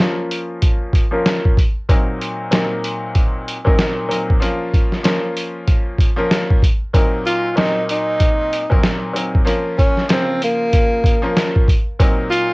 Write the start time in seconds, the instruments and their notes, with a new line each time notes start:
0.00 upright piano F3 A#3 C#4 F4 A#4, snare
0.31 closed hi-hat
0.62 kick, closed hi-hat
0.93 kick, closed hi-hat
1.11 upright piano F3 A#3 C#4 F4 A#4
1.26 snare, closed hi-hat
1.45 kick
1.57 kick, closed hi-hat
1.89 upright piano A#2 F#3 A#3 C4 D#4 A#4, kick, closed hi-hat
2.21 closed hi-hat
2.51 upright piano A#2 F#3 A#3 C4 D#4 A#4, snare, closed hi-hat
2.84 closed hi-hat
3.15 kick, closed hi-hat
3.48 closed hi-hat
3.65 upright piano A#2 F#3 A#3 C4 D#4 A#4, kick
3.79 snare, closed hi-hat
4.08 upright piano A#2 F#3 A#3 C4 D#4 A#4, closed hi-hat
4.30 kick
4.40 upright piano F3 A#3 C#4 F4 A#4, closed hi-hat
4.74 kick, closed hi-hat
4.92 snare
5.03 upright piano F3 A#3 C#4 F4 A#4, snare, closed hi-hat
5.37 closed hi-hat
5.68 kick, closed hi-hat
5.98 kick, closed hi-hat
6.16 upright piano F3 A#3 C#4 F4 A#4
6.31 snare, closed hi-hat
6.50 kick
6.62 kick, closed hi-hat
6.93 upright piano A#2 F#3 A#3 C4 D#4 A#4, kick, closed hi-hat
7.26 tenor saxophone F4, closed hi-hat
7.56 upright piano A#2 F#3 A#3 C4 D#4 A#4, tenor saxophone D#4, snare, closed hi-hat
7.89 tenor saxophone D#4, closed hi-hat
8.20 kick, closed hi-hat
8.53 closed hi-hat
8.70 upright piano A#2 F#3 A#3 C4 D#4 A#4, kick
8.84 snare, closed hi-hat
9.13 upright piano A#2 F#3 A#3 C4 D#4 A#4, closed hi-hat
9.35 kick
9.45 upright piano F3 A#3 C#4 F4 A#4, closed hi-hat
9.78 tenor saxophone C#4, kick, closed hi-hat
9.97 snare
10.08 upright piano C#3 F3 A#3 F4 A#4, tenor saxophone C4, snare, closed hi-hat
10.42 tenor saxophone A#3, closed hi-hat
10.73 kick, closed hi-hat
11.04 kick, closed hi-hat
11.22 upright piano F3 A#3 C#4 F4 A#4
11.37 snare, closed hi-hat
11.56 kick
11.68 kick, closed hi-hat
11.99 upright piano A#2 F#3 A#3 C4 D#4 A#4, kick, closed hi-hat
12.31 tenor saxophone F4, closed hi-hat